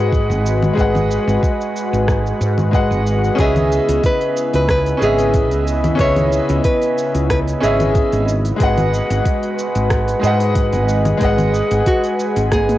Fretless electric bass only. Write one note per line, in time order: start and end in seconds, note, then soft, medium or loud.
0.00 0.31 G#2 medium
0.30 0.68 G#1 medium
0.78 1.17 G#1 medium
1.28 1.37 G#1 medium
1.93 2.31 G#1 medium
2.41 2.92 G#2 medium
2.91 3.29 G#1 medium
3.39 3.78 C#2 medium
3.89 3.98 C#2 medium
4.54 4.92 C#2 medium
5.02 5.52 G#1 medium
5.52 5.90 C#2 medium
5.99 6.39 C#2 medium
6.50 6.59 C#2 medium
7.15 7.53 C#2 medium
7.63 8.02 G#1 medium
8.13 8.51 G#1 medium
8.60 9.00 G#1 medium
9.10 9.20 G#1 medium
9.75 10.14 G#1 medium
10.23 10.75 G#2 medium
10.73 11.12 G#1 loud
11.21 11.60 G#1 medium
11.71 11.80 G#1 medium
12.36 12.78 G#1 medium